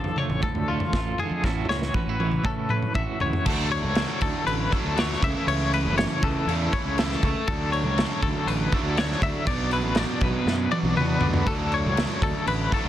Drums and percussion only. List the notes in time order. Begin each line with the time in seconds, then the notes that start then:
0.04 floor tom
0.16 mid tom
0.30 mid tom
0.42 kick, floor tom
0.55 floor tom
0.80 floor tom
0.93 kick, snare
1.18 floor tom
1.44 kick, snare
1.70 snare
1.82 snare
1.94 kick, high tom
2.20 high tom
2.32 mid tom
2.44 kick, mid tom
2.69 mid tom
2.82 mid tom
2.94 kick, mid tom
3.20 floor tom
3.33 floor tom
3.46 kick, crash
3.72 crash
3.95 snare, crash
4.21 kick, crash
4.47 crash
4.72 kick, crash
4.97 snare, crash
5.13 snare
5.23 kick, crash
5.48 crash
5.73 crash
5.98 snare, crash
6.23 kick, crash
6.49 crash
6.73 kick, crash
6.98 snare, crash
7.12 snare
7.23 kick, crash
7.47 kick, crash
7.73 crash
7.98 snare, crash
8.22 kick, crash
8.48 crash
8.72 kick, crash
8.97 snare, crash
9.12 snare
9.22 kick, crash
9.47 kick, crash
9.71 crash
9.95 snare, crash
10.21 kick, crash
10.47 snare
10.72 high tom
10.85 high tom
10.97 mid tom
11.21 floor tom
11.34 floor tom
11.47 kick, crash
11.72 crash
11.97 snare, crash
12.22 kick, crash
12.47 crash
12.72 kick, crash